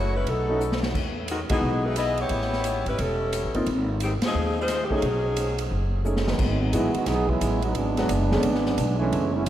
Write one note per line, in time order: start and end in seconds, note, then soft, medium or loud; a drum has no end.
0.00 0.23 F#1 medium
0.00 0.11 A3 medium
0.00 0.11 E4 medium
0.00 0.11 F#4 medium
0.00 0.11 C#5 medium
0.16 0.27 G#3 medium
0.16 0.27 C#4 medium
0.16 0.27 E4 medium
0.16 0.27 B4 medium
0.27 0.91 B1 medium
0.27 0.83 F#3 medium
0.27 0.84 B3 medium
0.27 0.83 D#4 medium
0.27 0.83 A4 medium
0.27 kick soft
0.27 ride medium
0.49 0.60 A3 medium
0.49 0.60 C#4 soft
0.49 0.60 D#4 medium
0.49 0.60 F#4 medium
0.60 hi-hat pedal medium
0.72 snare medium
0.83 snare medium
0.94 1.46 E2 medium
0.94 kick medium
0.94 crash medium
1.28 1.39 D#3 medium
1.28 1.39 G#3 medium
1.28 1.39 B3 medium
1.28 1.39 F#4 medium
1.28 hi-hat pedal medium
1.28 ride medium
1.49 1.61 D#2 medium
1.49 1.82 E3 medium
1.49 1.94 G#3 medium
1.49 1.94 B3 soft
1.49 1.83 B3 medium
1.49 1.94 D#4 medium
1.49 1.83 D#4 medium
1.49 1.94 F#4 medium
1.49 1.83 G#4 medium
1.49 kick medium
1.49 ride medium
1.61 2.26 B1 medium
1.85 1.97 G#3 medium
1.85 1.97 D#4 medium
1.85 1.96 E4 medium
1.85 1.97 B4 medium
1.96 2.17 B3 medium
1.96 2.17 E4 medium
1.96 2.17 G#4 medium
1.96 2.18 D#5 medium
1.96 cross-stick medium
1.96 hi-hat pedal medium
1.96 ride medium
2.17 2.87 B3 medium
2.17 2.87 E4 medium
2.17 2.88 G4 medium
2.17 2.88 C#5 medium
2.17 ride soft
2.29 2.82 A1 medium
2.29 kick soft
2.29 ride medium
2.42 snare soft
2.53 snare soft
2.64 hi-hat pedal medium
2.64 ride medium
2.85 2.97 G#1 medium
2.85 2.98 G3 medium
2.85 2.99 C#4 medium
2.85 2.99 E4 medium
2.85 2.99 B4 medium
2.85 ride soft
2.98 3.41 E1 medium
2.98 3.56 G3 medium
2.98 3.56 C#4 medium
2.98 3.56 E4 medium
2.98 3.56 A4 medium
2.98 kick soft
2.98 ride medium
3.33 cross-stick medium
3.33 hi-hat pedal medium
3.33 ride medium
3.44 3.54 A1 medium
3.54 3.65 G1 medium
3.54 3.65 A#3 medium
3.54 3.66 C4 medium
3.54 3.66 D#4 medium
3.54 3.66 F4 medium
3.54 ride soft
3.66 4.18 G#1 medium
3.66 kick soft
3.66 ride medium
4.00 4.13 D#3 medium
4.00 4.13 G#3 medium
4.00 4.13 C4 medium
4.00 4.13 G4 medium
4.00 hi-hat pedal medium
4.00 ride medium
4.22 4.56 D#4 medium
4.22 4.56 G#4 medium
4.22 muted upright bass stroke soft
4.22 snare medium
4.22 ride medium
4.26 4.56 F3 medium
4.26 4.56 C4 medium
4.34 4.99 D#2 medium
4.61 4.84 G#3 medium
4.61 4.84 D#4 medium
4.61 4.84 F4 medium
4.61 4.84 C5 loud
4.68 cross-stick medium
4.68 snare soft
4.68 hi-hat pedal medium
4.68 ride medium
4.84 4.92 G4 medium
4.90 5.01 A3 medium
4.90 5.02 C#4 medium
4.90 5.02 D#4 medium
4.90 5.02 G#4 medium
4.90 kick soft
4.96 5.61 F#3 medium
4.96 5.61 C#4 medium
4.96 5.61 D#4 medium
4.96 5.61 G#4 medium
5.02 5.67 B1 medium
5.02 kick soft
5.02 ride medium
5.37 hi-hat pedal soft
5.37 ride medium
5.58 ride medium
5.71 6.36 F#1 medium
5.71 kick soft
6.05 6.25 A3 soft
6.05 6.25 C#4 soft
6.05 6.25 D#4 soft
6.05 6.25 G#4 soft
6.05 hi-hat pedal medium
6.17 snare medium
6.27 6.59 D#3 medium
6.27 6.59 F#3 medium
6.27 6.59 G#3 medium
6.27 6.59 B3 medium
6.27 snare medium
6.39 6.72 G#1 medium
6.39 kick medium
6.39 crash medium
6.61 6.72 F#3 medium
6.61 6.72 G#3 medium
6.61 6.72 B3 medium
6.61 6.73 D#4 medium
6.73 6.93 A1 medium
6.73 6.93 E3 medium
6.73 6.94 F#3 medium
6.73 6.92 G#3 medium
6.73 6.93 G#3 soft
6.73 6.93 B3 medium
6.73 6.93 D#4 soft
6.73 6.94 E4 medium
6.73 6.94 F#4 medium
6.73 kick soft
6.73 hi-hat pedal medium
6.73 ride medium
6.93 7.07 D#3 medium
6.93 7.07 G#3 medium
6.93 7.06 B3 medium
6.93 7.07 F#4 medium
6.93 muted upright bass stroke soft
6.93 ride soft
7.06 7.40 B1 medium
7.06 7.27 F#3 medium
7.06 7.27 B3 medium
7.06 7.29 D#4 medium
7.06 7.29 G#4 loud
7.06 kick soft
7.06 snare soft
7.06 ride medium
7.28 7.62 F#3 medium
7.28 7.62 G#3 medium
7.28 7.62 B3 medium
7.28 7.63 E4 medium
7.28 kick medium
7.41 7.74 A1 medium
7.41 kick soft
7.41 hi-hat pedal medium
7.41 ride medium
7.62 7.74 F#3 medium
7.62 7.75 G#3 medium
7.62 7.74 B3 medium
7.62 7.75 D#4 medium
7.62 ride soft
7.75 8.08 G#1 medium
7.75 8.44 F#3 medium
7.75 8.98 G#3 medium
7.75 9.00 B3 medium
7.75 9.00 D4 loud
7.75 kick soft
7.75 ride medium
7.97 8.09 F#3 medium
7.97 8.09 G#3 medium
7.97 8.09 B3 medium
7.97 8.09 D4 medium
7.97 8.09 F#4 medium
7.97 snare soft
7.97 ride soft
8.09 8.42 F#1 medium
8.09 kick soft
8.09 hi-hat pedal medium
8.09 ride medium
8.32 8.43 D3 medium
8.32 8.43 G#3 medium
8.32 8.43 B3 medium
8.32 8.43 C#4 medium
8.32 8.44 G#4 medium
8.32 snare medium
8.43 8.77 G#1 medium
8.43 kick soft
8.43 ride medium
8.55 snare soft
8.66 snare soft
8.78 9.11 B1 medium
8.78 kick soft
8.78 hi-hat pedal medium
8.78 ride medium
8.99 9.31 E3 medium
8.99 9.31 G#3 medium
8.99 9.31 A3 medium
8.99 9.31 C#4 medium
9.12 9.45 F#1 medium
9.12 kick soft
9.12 ride medium
9.34 9.46 G#3 medium
9.34 9.44 A3 medium
9.34 9.44 C#4 medium
9.34 9.46 E4 medium
9.45 9.49 E3 medium
9.45 9.49 A3 medium
9.45 9.49 C#4 medium
9.45 9.49 F#4 loud